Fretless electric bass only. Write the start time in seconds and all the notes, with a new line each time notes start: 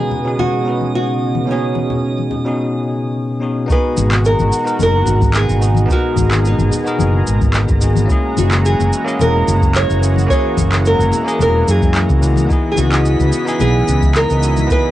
3.97 G#1
4.39 G#1
4.80 F#1
5.07 G#1
5.49 G#1
6.17 G#1
6.58 G#1
7.00 F#1
7.28 G#1
7.70 G#1
8.38 F#1
8.80 F#1
9.20 E1
9.48 F#1
9.90 F#1
10.57 F#1
10.99 F#1
11.40 E1
11.68 F#2
12.10 C#2
12.78 C#2
13.20 C#2
13.61 B1
13.88 C#2
14.31 C#2